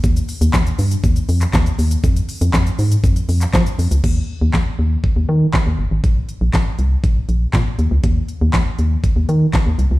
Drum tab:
CC |----------------|----------------|x---------------|----------------|
HH |-xox-xox-xox-xox|-xox-xox-xox-xox|----------------|x-x-x-x-x-x-x-x-|
SH |xxxxxxxxxxxxxxxx|xxxxxxxxxxxxxxxx|----------------|----------------|
CP |----x------xx---|----x------xx---|----x-------x---|----x-------x---|
SD |----o-------o---|----o-------o---|----o-------o---|----o-------o---|
BD |o---o---o---o---|o---o---o---o---|o---o---o---o---|o---o---o---o---|

CC |----------------|
HH |x-x-x-x-x-x-x-x-|
SH |----------------|
CP |----x-------x---|
SD |----o-------o---|
BD |o---o---o---o---|